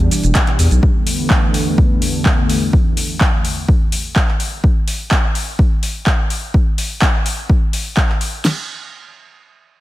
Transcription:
Already playing: B2 E3 G3 D4 G4
0.11 open hi-hat, shaker
0.23 E1, closed hi-hat, shaker
0.35 kick, clap, closed hi-hat, shaker
0.47 clap, closed hi-hat
0.59 E2, open hi-hat, shaker
0.71 B1, closed hi-hat, shaker
0.83 E2 D3 A3 B3, kick
1.07 open hi-hat
1.30 kick, clap
1.54 open hi-hat
1.78 kick
2.02 open hi-hat
2.26 kick, clap
2.49 open hi-hat
2.73 kick
2.97 open hi-hat
3.21 kick, clap
3.45 open hi-hat
3.68 kick
3.92 open hi-hat
4.16 kick, clap
4.28 clap
4.40 open hi-hat
4.64 kick
4.88 open hi-hat
5.11 kick, clap
5.35 open hi-hat
5.59 kick
5.83 open hi-hat
6.07 kick, clap
6.30 open hi-hat
6.54 kick
6.78 open hi-hat
7.02 kick, clap
7.26 open hi-hat
7.49 kick
7.73 open hi-hat
7.97 kick, clap
8.09 clap
8.21 open hi-hat
8.45 snare, crash

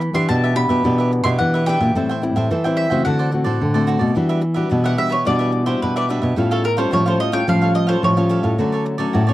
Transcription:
Already playing: E3 B5
0.01 muted cavaquinho stroke
0.13 E3 B3 D4 G4 B4 E5 C6
0.28 B2 D4 G4 B4 E5 A5
0.44 G4 B4 E5
0.55 B3 D4 G4 B5
0.69 B2 G4 B4 E5
0.84 B2 E3 B3 D4 G4 B4 E5
0.98 G4 B4 E5
1.12 muted cavaquinho stroke
1.24 B2 B3 D4 G4 B4 E5 C6
1.39 B2 E3 F#5
1.54 G4 B4 E5
1.66 B3 D4 G4 B4 E5 G5
1.80 A#2 G4 B4 E5
1.95 A2 G3 C4 E4 A4 C5 E5 G5
2.09 C5 E5 G5
2.22 G3 C4 E4, muted cavaquinho stroke
2.36 A2 C5 E5 G5
2.51 E3 A4 C5 E5 G5
2.64 G3 C4 E4 C5 E5 G5
2.77 E5
2.90 C#3 A3 C4 F#4 C5 E5 G5
3.05 D3 F#4 A4 C5 D5 F#5
3.19 A4 C5 D5
3.31 A3 C4 F#4, muted cavaquinho stroke
3.44 A2 A4 C5 D5
3.61 A2 D3
3.74 A3 C4 F#4 A4 C5 D5
3.87 F#4 A4 C5 D5
3.99 B2 A4 C5 D5
4.15 E3 G3 D4 F#4 G4 B4 E5
4.29 G4 B4 E5
4.41 muted cavaquinho stroke
4.54 G3 D4 F#4 G4 B4 E5
4.70 B2 D4 G4 B4 E5
4.84 G4 B4 E5 F#5
4.97 G3 D4 F#4 E5
5.10 G4 B4 C#5 E5
5.25 B2 E3 G3 D4 F#4 G4 B4 D5 E5
5.39 G4 B4 E5
5.52 muted cavaquinho stroke
5.66 G3 D4 F#4 G4 B4 C5 E5
5.82 B2 B4
5.96 G4 B4 D5 E5
6.09 G3 D4 F#4 G4 B4 E5
6.22 B2 G4 B4 E5
6.36 A2 G3 C#4 F4 G4 A4 C#5 F5
6.51 A4 C#5 F5
6.64 A#4, muted cavaquinho stroke
6.77 G3 C#4 F4 A4 C5 C#5 F5
6.91 A2 F3 G4 A4 C#5 F5
7.06 G3 C#4 F4 A4 C5 C#5 F5
7.20 D#5
7.32 G3 C#4 F4 A4 C#5 F5 G5
7.47 A2 F3 G3 C#4 F4 G4 A4 C#5 F5
7.62 A4 C#5 F5
7.74 D#5, muted cavaquinho stroke
7.87 G3 C#4 F4 A4 C5 C#5 F5
8.03 A2 F3 C#5
8.17 G3 C#4 F4 A4 C#5 F5
8.29 G4 A4 C#5 F5
8.43 A2 A4 C#5 F5
8.58 D3 F#3 A3 C#4 F#4 A4 C#5 D5
8.72 A4 C#5 D5
8.86 muted cavaquinho stroke
8.98 F#3 A3 C#4 A4 C#5 D5
9.13 A2 F#4 A4 C#5 D5
9.27 F#3 A3 C#4 A4 C#5 D5

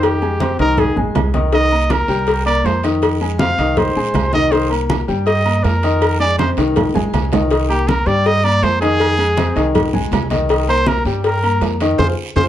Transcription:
Already playing: F2 D#3 D#4 D#5
0.03 G4, cowbell, high conga, low agogo
0.22 G#3 G#4 G#5, high conga, low agogo
0.40 C4 C5 C6, cowbell, high conga, low timbale, low agogo
0.59 C2 D#3 D#4 A#4 D#5, cowbell, high conga
0.77 G#4, cowbell, high conga, low conga, low agogo
0.96 A#1 G#3 G#4 G#5, high conga, low conga
1.15 C2, cowbell, high conga, low timbale, low agogo
1.34 D#3 D#4 D#5, cowbell, high conga
1.52 D#3 D#4 D#5, cowbell, high conga, low agogo, long guiro
1.72 A#3 A#4 A#5, high conga, low agogo
1.90 A#4, cowbell, high conga, low timbale, low agogo, short guiro
2.08 C2 G3 G4 G5, high conga, short guiro
2.27 cowbell, high conga, low agogo, long guiro
2.45 A#3 A#4 D5 A#5, high conga, low agogo
2.64 F2 C5, cowbell, high conga, low timbale, short guiro
2.83 D#3 D#4 D#5, cowbell, high conga, low agogo, short guiro
3.02 cowbell, high conga, low agogo, long guiro
3.21 G#3 G#4 G#5, high conga, low agogo
3.39 C4 C5 F5 C6, cowbell, high conga, low timbale, low agogo, short guiro
3.58 C2 D#3 D#4 D#5, cowbell, high conga, short guiro
3.77 C5, cowbell, high conga, low conga, low agogo, long guiro
3.95 A#1 G#3 G#4 G#5, high conga
4.14 C2, cowbell, high conga, low timbale, low agogo, short guiro
4.33 D#3 D#4 D#5, cowbell, high conga, short guiro
4.51 D#3 D#4 C5 D#5, cowbell, high conga, low agogo, long guiro
4.69 A#3 A#4 A#5, high conga, low agogo
4.90 cowbell, high conga, low timbale, low agogo, short guiro
5.08 G2 G3 G4 G5, high conga, short guiro
5.27 D#5, cowbell, high conga, low agogo, long guiro
5.45 A#3 A#4 A#5, high conga, low agogo
5.64 F2 A#4, cowbell, high conga, low timbale, short guiro
5.83 D#3 D#4 D#5, cowbell, high conga, low agogo, short guiro
6.02 cowbell, high conga, low agogo, long guiro
6.20 G#3 G#4 D5 G#5, high conga, low agogo
6.38 C4 C5 C6, cowbell, high conga, high timbale, low agogo, short guiro
6.57 C2 D#3 D#4 D#5, cowbell, high conga, high timbale, short guiro
6.76 cowbell, high conga, low conga, low timbale, low agogo, long guiro
6.94 A#1 G#3 G#4 G#5, high conga, low conga, low timbale
7.13 C2, cowbell, high conga, low timbale, low agogo, short guiro
7.32 D#3 D#4 D#5, cowbell, high conga, low timbale, short guiro
7.50 D#3 D#4 D#5, cowbell, high conga, low agogo, long guiro
7.69 A#3 G4 A#4 A#5, high conga, low agogo
7.87 A#4, cowbell, high conga, low timbale, low agogo, short guiro
8.06 G2 G3 G4 D5 G5, high conga, short guiro
8.24 D#5, cowbell, high conga, low agogo, long guiro
8.44 A#3 A#4 D5 A#5, high conga, low agogo
8.62 F2 C5, cowbell, high conga, low timbale, short guiro
8.81 D#3 D#4 G#4 D#5, cowbell, high conga, low agogo, short guiro
8.99 cowbell, high conga, low agogo, long guiro
9.18 G#3 G#4 G#5, high conga, low agogo
9.37 C4 C5 C6, cowbell, high conga, low timbale, low agogo, short guiro
9.56 C2 D#3 D#4 D#5, cowbell, high conga, short guiro
9.75 cowbell, high conga, low conga, low agogo, long guiro
9.93 G#3 G#4 G#5, high conga, low conga
10.11 C2, cowbell, high conga, low timbale, low agogo, short guiro
10.30 D#3 D#4 D#5, cowbell, high conga, short guiro
10.49 D#3 D#4 D#5, cowbell, high conga, low agogo, long guiro
10.68 A#3 A#4 C5 A#5, high conga, low agogo
10.86 A#4, cowbell, high conga, low timbale, low agogo, short guiro
11.05 G2 G3 G4 G5, high conga, short guiro
11.24 A#4, cowbell, high conga, low agogo, long guiro
11.43 A#3 A#4 A#5, high conga, low agogo
11.61 F2, cowbell, high conga, low timbale, short guiro
11.80 D#3 D#4 D#5, cowbell, high conga, low agogo, short guiro
11.99 F2 F4 G#4 C5, cowbell, high conga, high timbale, long guiro
12.36 F2 F4 G#4 C5, cowbell, high conga, high timbale, long guiro

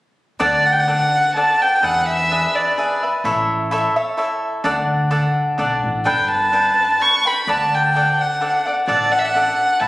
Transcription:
0.40 D2 D4 A4 D5 F#5
0.66 F#5
0.72 G5
0.80 F#5
0.88 D4 A4 D5 F#5
1.36 D4 A4 D5 F#5 A5
1.62 G5
1.83 E2 D4 G#4 B4 E5 F#5
2.09 E5
2.31 D4 G#4 B4 E5
2.55 D5
2.77 D4 G#4 B4 E5
3.03 G#4 B4 E5
3.24 A1 E4 A4 C#5 E5
3.71 E4 A4 C#5 E5
3.96 A4 C#5 E5
4.17 E4 A4 C#5 E5
4.64 D2 D4 A4 D5 F#5
5.11 D4 A4 D5 F#5
5.58 B1 D4 A4 D5 F#5
5.84 A1
6.05 G1 D4 A4 B4 G5
6.31 A5
6.52 D4 A4 B4 G5
7.00 D4 A4 B4 G5 C#6
7.25 A4 B4 G5 B5
7.47 D2 D4 A4 D5 F#5 A5
7.75 G5
7.95 D4 A4 D5 F#5
8.21 F#5
8.41 D4 A4 D5 F#5
8.66 A4 D5 F#5
8.88 A1 D4 A4 D5 F#5
9.12 F#5
9.19 E5
9.25 F#5
9.35 D4 A4 D5 F#5
9.80 A1 C#5 E5 A5 B5

